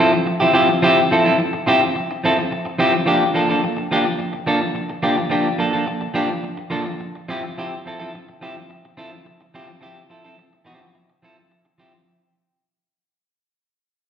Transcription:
Already playing: clean electric guitar F3
0.00 clean electric guitar C4 E4 A4
0.13 muted clean electric guitar stroke
0.26 muted clean electric guitar stroke
0.40 clean electric guitar F3 C4 E4 G4
0.53 clean electric guitar F3 C4 E4 G4
0.69 muted clean electric guitar stroke
0.82 clean electric guitar F3 C4 E4 G4
1.11 clean electric guitar F3 C4 E4 A4
1.25 clean electric guitar F3 C4 E4 A4
1.39 muted clean electric guitar stroke
1.53 muted clean electric guitar stroke
1.66 clean electric guitar F3 C4 E4 G4
1.82 muted clean electric guitar stroke
1.95 muted clean electric guitar stroke
2.11 muted clean electric guitar stroke
2.24 clean electric guitar F3 C4 E4 A4
2.39 muted clean electric guitar stroke
2.52 muted clean electric guitar stroke
2.65 muted clean electric guitar stroke
2.79 clean electric guitar F3 C4 E4 G4
2.94 muted clean electric guitar stroke
3.06 clean electric guitar F3 A#3 D4 G4
3.34 clean electric guitar F3 A#3 D4 A4
3.49 clean electric guitar F3 A#3 D4 A4
3.64 muted clean electric guitar stroke
3.77 muted clean electric guitar stroke
3.91 clean electric guitar F3 A#3 D4 G4
4.06 muted clean electric guitar stroke
4.19 muted clean electric guitar stroke
4.33 muted clean electric guitar stroke
4.46 clean electric guitar F3 A#3 D4 A4
4.62 muted clean electric guitar stroke
4.74 muted clean electric guitar stroke
4.90 muted clean electric guitar stroke
5.03 clean electric guitar F3 A#3 D4 G4
5.17 muted clean electric guitar stroke
5.30 clean electric guitar F3 A#3 D4 G4
5.58 clean electric guitar F3 A#3 D4 A4
5.73 clean electric guitar F3 A#3 D4 A4
5.86 muted clean electric guitar stroke
6.01 muted clean electric guitar stroke
6.14 clean electric guitar F3 A#3 D4 G4
6.29 muted clean electric guitar stroke
6.43 muted clean electric guitar stroke
6.57 muted clean electric guitar stroke
6.70 clean electric guitar F3 A#3 D4 A4
6.86 muted clean electric guitar stroke
7.00 muted clean electric guitar stroke
7.15 muted clean electric guitar stroke
7.28 clean electric guitar F3 C4 E4 G4
7.43 muted clean electric guitar stroke
7.57 clean electric guitar F3 C4 E4 G4
7.86 clean electric guitar F3 C4 E4 A4
8.00 clean electric guitar F3 C4 E4 A4
8.14 muted clean electric guitar stroke
8.29 muted clean electric guitar stroke
8.41 clean electric guitar F3 C4 E4 G4
8.56 muted clean electric guitar stroke
8.69 muted clean electric guitar stroke
8.85 muted clean electric guitar stroke
8.97 clean electric guitar F3 C4 E4 A4
9.12 muted clean electric guitar stroke
9.25 muted clean electric guitar stroke
9.41 muted clean electric guitar stroke
9.54 clean electric guitar F3 C4 E4 G4
9.68 muted clean electric guitar stroke
9.81 clean electric guitar F3 C4 E4 G4
10.10 clean electric guitar F3 C4 E4 A4
10.24 clean electric guitar F3 C4 E4 A4
10.38 muted clean electric guitar stroke
10.53 muted clean electric guitar stroke
10.65 clean electric guitar F3 C4 E4 G4
10.81 muted clean electric guitar stroke
10.94 muted clean electric guitar stroke
11.10 muted clean electric guitar stroke
11.22 clean electric guitar F3 C4 E4 A4
11.38 muted clean electric guitar stroke
11.51 muted clean electric guitar stroke
11.65 muted clean electric guitar stroke
11.78 clean electric guitar F3 C4 E4 G4
11.94 muted clean electric guitar stroke

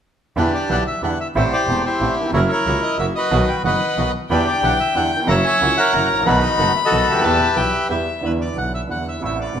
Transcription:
0.36 upright piano E2 D3 E3 G3 B3 E4, double bass E2, bandoneon D4 E4 G4 B4
0.54 bandoneon D5
0.69 upright piano B1 B2 D3 G3 B3 E4, double bass B1, bandoneon D4 E4 G4 F#5
0.87 bandoneon E5
1.02 double bass E2, upright piano E2 D3 E3 G3 B3 E4, bandoneon D4 E4 G4 F#5
1.20 bandoneon E5
1.35 double bass A1, upright piano A1 A2 C3 G3 A3 E4, bandoneon A3 C4 G4 C5 E5
1.53 bandoneon G4 D5
1.68 double bass E1, upright piano E1 E2 C3 G3 A3 E4, bandoneon A3 C4 G4
1.85 bandoneon E4 G4 C5
2.01 double bass A1, upright piano A1 A2 C3 G3 A3 E4, bandoneon A3 C4 G4
2.21 upright piano D#2
2.26 upright piano E2 F2
2.33 double bass F#1, upright piano F#2 C#3 F#3 A#3 E4, bandoneon A#3 E4 F#4 A#4 C#5
2.51 bandoneon E4 A#4 C#5
2.66 upright piano C#2 C#3 F#3 A#3 E4, double bass C#2, bandoneon A#3 E4 F#4
2.83 bandoneon D#5
2.98 double bass F#1, upright piano F#2 C#3 F#3 A#3 E4, bandoneon A#3 E4 F#4 E5
3.16 bandoneon F#4 B4 D#5
3.31 upright piano B1 B2 D#3 F#3 B3 F#4, double bass B1, bandoneon B3 D#4 F#4
3.48 bandoneon G5
3.64 upright piano F#1 F#2 D#3 F#3 B3 F#4, double bass F#1, bandoneon B3 D#4 F#4 B4 D#5 F#5
3.97 double bass B1, upright piano B1 B2 D#3 F#3 B3 F#4, bandoneon B3 D#4 F#4
4.30 double bass E2, upright piano E2 D3 E3 G3 B3 E4, bandoneon D4 E4 G4 B4, violin G5
4.47 bandoneon D5
4.62 double bass B1, upright piano B1 B2 D3 G3 B3 E4, bandoneon D4 E4 G4 F#5
4.80 bandoneon E5
4.95 upright piano E2 D3 E3 G3 B3 E4, double bass E2, bandoneon D4 E4 G4 F#5
5.12 upright piano D#2, bandoneon G5
5.20 upright piano E2 F2
5.27 double bass F#1, upright piano F#2 C#3 F#3 A#3 E4, bandoneon A#3 E4 F#4 C#5 E5 A#5, violin F#5
5.45 bandoneon C#5 E5 G#5
5.61 upright piano C#2 C#3 F#3 A#3 E4, double bass C#2, bandoneon A#3 E4 F#4
5.77 bandoneon A#4 C#5 F#5
5.93 double bass F#1, upright piano F#2 C#3 F#3 A#3 E4, bandoneon A#3 E4 F#4, violin A#5
6.10 double bass A1
6.14 upright piano G#1
6.19 upright piano A1 A#1
6.26 upright piano B1 B2 D#3 A3 B3 F#4, double bass B1, bandoneon B3 D#4 F#4 A4 B4, violin B5
6.42 bandoneon D#5
6.59 upright piano F#1 F#2 D#3 A3 B3 F#4, double bass F#1, bandoneon B3 D#4 A4 F#5
6.76 bandoneon E5
6.85 bandoneon F#4 A4 D#5
6.91 upright piano B1 B2 D#3 A3 B3 F#4, double bass B1, bandoneon B3 D#4 A4
7.08 upright piano C#2, double bass D2, bandoneon G4 B4 E5
7.15 upright piano D2
7.19 upright piano D#2 E3 G3 B3
7.23 upright piano E2 G4, double bass E2, bandoneon B3 E4 G4, violin A5
7.55 upright piano B1 B2 E3 G3 B3 G4, double bass B1, bandoneon B3 E4 G4, violin G5
7.89 upright piano E2 E3 G3 B3 G4, double bass E2, bandoneon B3 E4 G4, violin E5
8.20 double bass E2, upright piano E2 D3 E3 G3 B3
8.25 upright piano E4, bandoneon B4
8.41 bandoneon D5
8.54 upright piano B1 B2 D3 G3 B3 E4, double bass B1, bandoneon F#5
8.74 bandoneon E5
8.87 double bass E2, upright piano E2 D3 E3 G3 B3, bandoneon F#5
8.91 upright piano E4
9.08 bandoneon E5
9.20 double bass A1, upright piano A1 A2 C3 G3 A3 E4
9.25 bandoneon E5
9.41 bandoneon D5
9.53 double bass E1, upright piano E1 E2 C3 G3 A3
9.57 upright piano E4

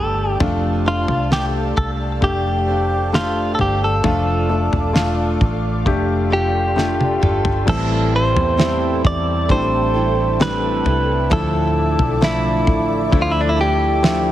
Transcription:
Already playing: fingered electric bass G1, grand piano A3 D4 G4, steel-string acoustic guitar D4 G4 A4, clean electric guitar A4, ambient pad A4 D5 G5 A5
0.40 fingered electric bass F1, grand piano C3 A3 D4 F4, steel-string acoustic guitar F3 A3 D4 A4 C5, ambient pad D5 F5, kick, floor tom
0.85 grand piano A3 D4 F4, steel-string acoustic guitar D4 A4 C5, clean electric guitar F4
1.08 fingered electric bass C2, floor tom
1.31 steel-string acoustic guitar A3 D4 A4 C5, grand piano A3 D4 G4, clean electric guitar G4, snare
1.77 fingered electric bass C2, clean electric guitar A4, kick, floor tom
2.21 fingered electric bass F1, grand piano A3 D4 G4, clean electric guitar G4, kick, floor tom
2.67 steel-string acoustic guitar D4 A4 C5
3.12 steel-string acoustic guitar A3 D4 A4 C5, grand piano A3 D4 G4, clean electric guitar F4, snare
3.55 clean electric guitar A4, steel-string acoustic guitar C5
3.59 fingered electric bass G1, steel-string acoustic guitar D4 A4, clean electric guitar G4, floor tom
3.84 clean electric guitar A4
4.03 fingered electric bass F1, steel-string acoustic guitar F3 A3 D4 F4 A4, grand piano F3 A3 D4 F4, ambient pad F5 D6, kick, floor tom
4.49 grand piano A3 D4 F4, steel-string acoustic guitar D4 F4 A4
4.73 fingered electric bass E1, floor tom
4.93 grand piano A3 D4 F4, steel-string acoustic guitar A3 D4 F4, snare
4.98 steel-string acoustic guitar A4
5.41 fingered electric bass A1, kick, floor tom
5.85 fingered electric bass F1, grand piano A3 D4 G4, ambient pad C6, kick, floor tom
6.30 steel-string acoustic guitar D4 F4 A4, clean electric guitar G4
6.76 steel-string acoustic guitar A3 D4 F4 A4, grand piano A3 D4 G4, snare
7.01 high tom
7.21 fingered electric bass G1, steel-string acoustic guitar D4 F4 A4, mid tom
7.45 floor tom
7.66 fingered electric bass A1, grand piano A2 E3 G3 A3 C4 E4, steel-string acoustic guitar A2 E3 G3 C4 E4 A4, ambient pad A4 E5 G5 A5, clean electric guitar A4, kick, floor tom, crash
8.16 clean electric guitar C5
8.36 fingered electric bass E2, floor tom
8.57 steel-string acoustic guitar A2 E3 G3 C4 E4 A4, grand piano G3 A3 C4 E4, snare
9.04 fingered electric bass E2, clean electric guitar D5, kick, floor tom
9.48 fingered electric bass A1, steel-string acoustic guitar G3 C4 E4 A4, grand piano G3 A3 C4 D4, clean electric guitar C5, kick, floor tom
9.94 steel-string acoustic guitar G3 C4 E4 A4
10.39 steel-string acoustic guitar A2 E3 G3 C4 E4 A4, grand piano G3 A3 C4 D4, clean electric guitar B4, snare
10.84 fingered electric bass C2, steel-string acoustic guitar G3 C4 E4 A4, floor tom
11.29 fingered electric bass D2, grand piano A2 F3 A3 D4 E4, steel-string acoustic guitar D3 F3 A3 D4 E4 A4, clean electric guitar A4, ambient pad D5 D6, kick, floor tom
11.99 fingered electric bass B1, floor tom
12.21 steel-string acoustic guitar D3 F3 A3 D4 E4 A4, grand piano F3 A3 D4 E4, clean electric guitar E4, snare
12.67 fingered electric bass A1, kick, floor tom
13.11 fingered electric bass D2, grand piano F3 A3 D4 E4, steel-string acoustic guitar A3 D4 E4 A4, kick, floor tom
13.22 clean electric guitar F4
13.32 clean electric guitar E4
13.41 clean electric guitar D4
13.49 clean electric guitar E4
13.57 steel-string acoustic guitar A3 D4 E4 A4
13.61 clean electric guitar G4
14.03 steel-string acoustic guitar D3 F3 A3 D4 E4 A4, grand piano F3 A3 D4 E4, snare

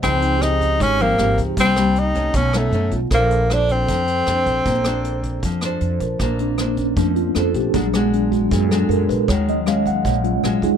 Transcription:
0.02 upright bass C#2, nylon-string guitar C#3 F3 C4 D#4, tenor saxophone C4, tine electric piano G#4, kick, cross-stick, closed hi-hat
0.22 tine electric piano D#4, closed hi-hat
0.38 nylon-string guitar F3 C4, tine electric piano G4, cross-stick, closed hi-hat
0.42 nylon-string guitar D#4, tenor saxophone D#4
0.52 tine electric piano G#4
0.61 tine electric piano D#4, kick, closed hi-hat
0.80 upright bass G#1, nylon-string guitar G#2, tenor saxophone C#4, kick, closed hi-hat
0.99 nylon-string guitar F3 C4 D#4, tenor saxophone A#3, closed hi-hat
1.18 upright bass G#1, nylon-string guitar F3 C4 D#4, tine electric piano G4, cross-stick, closed hi-hat
1.38 upright bass C#2, kick, closed hi-hat
1.57 upright bass C2, nylon-string guitar C3 G3 A#3 D#4, tenor saxophone C4, kick, closed hi-hat
1.76 nylon-string guitar G3 A#3 D#4, cross-stick, closed hi-hat
1.96 tenor saxophone D#4, closed hi-hat
2.15 nylon-string guitar A3 C#4 D#4, kick, closed hi-hat
2.33 upright bass B1, nylon-string guitar B2, tenor saxophone C#4, kick, closed hi-hat
2.53 nylon-string guitar A3 C#4 D#4, tenor saxophone A3, cross-stick, closed hi-hat
2.72 upright bass F#2, nylon-string guitar A3 C#4 D#4, closed hi-hat
2.91 upright bass B1, tine electric piano F4, kick, closed hi-hat
3.10 upright bass A#1, nylon-string guitar A#3 D4 A4 C5, tenor saxophone A#3, tine electric piano A4, kick, cross-stick, closed hi-hat
3.30 closed hi-hat
3.50 nylon-string guitar D4 A4 C5, tenor saxophone D4, cross-stick, closed hi-hat
3.69 tenor saxophone C4, kick, closed hi-hat
3.88 nylon-string guitar F3, kick, closed hi-hat
4.07 closed hi-hat
4.26 upright bass F2, nylon-string guitar D4 A4 C5, cross-stick, closed hi-hat
4.46 upright bass A#1, kick, closed hi-hat
4.65 upright bass A#1, nylon-string guitar A#3, tine electric piano C5, kick, closed hi-hat
4.84 nylon-string guitar D4 A4 C5, cross-stick, closed hi-hat
5.04 closed hi-hat
5.23 kick, closed hi-hat
5.43 upright bass F2, nylon-string guitar F3, kick, closed hi-hat
5.61 nylon-string guitar D4 A4 C5, cross-stick, closed hi-hat
5.81 upright bass F2, closed hi-hat
6.00 upright bass A#1, tine electric piano A#4, kick, closed hi-hat
6.19 upright bass A#1, nylon-string guitar A#3 D4 A4 C5, kick, cross-stick, closed hi-hat
6.39 tine electric piano C4 D4, closed hi-hat
6.58 tine electric piano A#3, nylon-string guitar D4 A4 C5, cross-stick, closed hi-hat
6.77 tine electric piano C#4, kick, closed hi-hat
6.96 upright bass F2, nylon-string guitar F3, tine electric piano A3 C4 D4, kick, closed hi-hat
7.16 tine electric piano F4, closed hi-hat
7.35 upright bass F2, nylon-string guitar D4 A4 C5, tine electric piano A4, cross-stick, closed hi-hat
7.54 upright bass A#1, tine electric piano G4, kick, closed hi-hat
7.74 upright bass A#1, nylon-string guitar A#2 G#3 D4 F#4, tine electric piano F#3 G#3 D4 G#4, kick, closed hi-hat
7.94 nylon-string guitar G#3 D4 F#4, tine electric piano B3, cross-stick, closed hi-hat
8.13 tine electric piano D4, closed hi-hat
8.31 tine electric piano F#3 G#3 D4 F#4, kick, closed hi-hat
8.51 upright bass F#2, nylon-string guitar A#2, tine electric piano G#4, kick, closed hi-hat
8.69 nylon-string guitar G#3 D4 F#4, tine electric piano A4, cross-stick, closed hi-hat
8.89 upright bass F#2, tine electric piano A#4, closed hi-hat
9.09 upright bass A#1, tine electric piano B4, kick, closed hi-hat
9.28 upright bass D#2, nylon-string guitar D#3 G#3 C#4 F#4, tine electric piano C#5, kick, cross-stick, closed hi-hat
9.48 tine electric piano F#3 G#3 C#4 D#5, closed hi-hat
9.66 nylon-string guitar G#3 C#4 F#4, tine electric piano F5, cross-stick, closed hi-hat
9.86 tine electric piano F#5, kick, closed hi-hat
10.05 upright bass A#1, nylon-string guitar A#2, kick, closed hi-hat
10.23 tine electric piano F#3 G#3 C#4 F4, closed hi-hat
10.43 upright bass A#1, nylon-string guitar G#3 C#4 F#4, cross-stick, closed hi-hat
10.62 upright bass D#2, tine electric piano G#3 D#4 F4 G#4, kick, closed hi-hat

